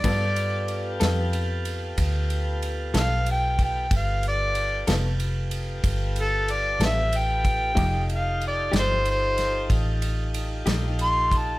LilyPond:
<<
  \new Staff \with { instrumentName = "Harmonica" } { \time 12/8 \key g \dorian \tempo 4. = 62 d''4. r2. f''8 g''8 g''8 | f''8 d''4 r2 a'8 d''8 e''8 g''4~ | g''8 f''8 d''8 c''8 c''4 r2 c'''8 a''8 | }
  \new Staff \with { instrumentName = "Tonewheel organ" } { \time 12/8 \key g \dorian <b f' g' a'>1. | <b f' g' a'>1. | <ees' f' g' a'>1. | }
  \new Staff \with { instrumentName = "Clean electric guitar" } { \time 12/8 \key g \dorian <g b f' a'>8 r4 <g b f' a'>8 r2 r8 <g b f' a'>8 r4 | r4. <g b f' a'>8 r2 r8 <g b f' a'>8 r4 | <f a ees' g'>8 r4 <f a ees' g'>8 r2 r8 <f a ees' g'>8 r4 | }
  \new Staff \with { instrumentName = "Fingered electric bass" } { \clef bass \time 12/8 \key g \dorian g,4. f,4. d,4. b,,4. | g,,4. f,,4. g,,4. a,,4. | f,,4. g,,4. a,,4. bes,,4. | }
  \new DrumStaff \with { instrumentName = "Drums" } \drummode { \time 12/8 <bd cymr>8 cymr8 cymr8 <cymr sn>8 cymr8 cymr8 <bd cymr>8 cymr8 cymr8 <cymr sn>8 cymr8 <bd cymr>8 | <bd cymr>8 cymr8 cymr8 <cymr sn>8 cymr8 cymr8 <bd cymr>8 cymr8 cymr8 <cymr sn>8 cymr8 <bd cymr>8 | <bd cymr>8 cymr8 cymr8 <cymr sn>8 cymr8 <cymr sn>8 <bd cymr>8 cymr8 cymr8 <cymr sn>8 cymr8 <bd cymr>8 | }
>>